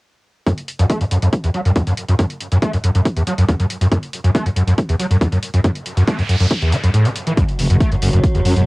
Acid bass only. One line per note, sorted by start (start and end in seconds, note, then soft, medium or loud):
0.46 0.53 F#2 medium
0.79 0.85 F#2 loud
0.90 0.99 A3 medium
1.01 1.04 F#2 loud
1.11 1.17 F#2 medium
1.22 1.28 F#2 medium
1.44 1.50 E2 loud
1.54 1.60 F#3 medium
1.65 1.71 F#2 loud
1.76 1.82 E2 medium
1.87 1.93 F#2 loud
2.09 2.14 F#2 medium
2.19 2.25 F#2 medium
2.52 2.58 F#2 loud
2.62 2.72 A3 medium
2.73 2.77 F#2 loud
2.84 2.90 F#2 medium
2.95 3.01 F#2 medium
3.17 3.22 E2 loud
3.27 3.33 F#3 medium
3.38 3.44 F#2 loud
3.49 3.55 E2 medium
3.60 3.65 F#2 loud
3.81 3.87 F#2 medium
3.92 3.98 F#2 medium
4.24 4.30 F#2 loud
4.35 4.44 A3 medium
4.46 4.49 F#2 loud
4.56 4.63 F#2 medium
4.67 4.73 F#2 medium
4.89 4.95 E2 loud
5.00 5.06 F#3 medium
5.11 5.17 F#2 loud
5.21 5.27 E2 medium
5.32 5.38 F#2 loud
5.54 5.60 F#2 medium
5.64 5.70 F#2 medium
5.97 6.03 F#2 loud
6.07 6.17 A3 medium
6.19 6.22 F#2 loud
6.29 6.35 F#2 medium
6.40 6.46 F#2 medium
6.62 6.74 E2 loud
6.72 6.76 F#3 medium
6.83 6.89 F#2 medium
6.94 7.06 A2 medium
7.05 7.08 C#3 medium
7.27 7.32 E3 medium
7.37 7.43 F#2 medium
7.70 7.76 F#2 loud
7.80 7.90 A3 medium
7.91 7.95 F#2 loud
8.02 8.08 F#2 medium
8.13 8.19 F#2 medium
8.35 8.40 E2 loud
8.45 8.51 F#3 medium
8.56 8.62 F#2 loud